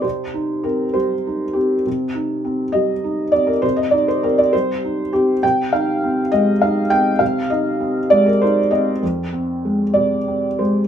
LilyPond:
\new Staff \with { instrumentName = "Felt piano" } { \time 6/8 \key c \minor \tempo 4. = 67 << { c''4 bes'8 c''4 g'8 | r4. ees''4 d''16 bes'16 | c''16 ees''16 d''16 c''16 bes'16 d''16 c''4 g'8 | g''8 f''4 ees''8 f''8 g''8 |
f''8 ees''4 d''16 bes'16 c''8 ees''8 | r4. d''4 c''8 | } \\ { <c c'>8 ees'8 c'8 g8 ees'8 c'8 | c8 ees'8 c'8 g8 ees'8 c'8 | c8 ees'8 c'8 g8 ees'8 c'8 | c8 ees'8 c'8 aes8 ees'8 c'8 |
c8 ees'8 c'8 aes8 ees'8 c'8 | f,8 c'8 aes8 c8 c'8 aes8 | } >> }